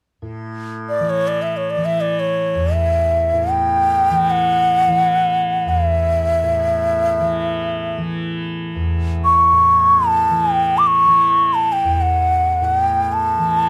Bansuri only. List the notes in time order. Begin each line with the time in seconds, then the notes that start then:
0.89 D5
1.10 C#5
1.28 D5
1.42 E5
1.57 C#5
1.70 D5
1.85 E5
2.01 D5
2.20 C#5
2.74 E5
3.51 G5
4.30 F#5
5.69 F5
5.88 E5
9.24 C#6
10.07 A5
10.52 G5
10.78 D6
10.87 C#6
11.54 A5
11.72 G5
12.01 F#5
12.64 F#5
12.78 G5
13.13 A5